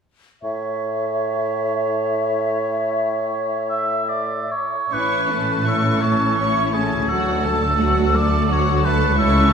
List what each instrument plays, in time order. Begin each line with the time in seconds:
0.42 bassoon A2, oboe C#5, flute section E5
3.69 oboe E5
4.09 oboe D5
4.51 oboe C#5
4.92 double bass section A1, cello section A2, viola section C#4, violin section E4 C#6, oboe B4
5.29 viola section A3, violin section C#4 A5
5.66 viola section C#4, violin section E4 C#6, oboe A4
6.01 viola section A3, violin section C#4 A5, oboe C#5
6.38 viola section C#4, violin section E4 C#6
6.73 viola section A3, violin section C#4 A5, oboe G#4
7.07 cello section D2, double bass section D2, viola section F#3, violin section F#4 F#5, oboe A4
7.44 viola section A3, violin section A4 A5
7.79 viola section F#3, violin section F#4 F#5
8.13 viola section A3, violin section A4 A5, oboe D5
8.48 viola section F#3, violin section F#4 F#5, oboe C#5
8.83 viola section A3, violin section A4 A5, oboe B4
9.15 cello section C#2, double bass section C#2, viola section C#4, violin section E4 C#6, oboe A4
9.49 violin section C#4 A5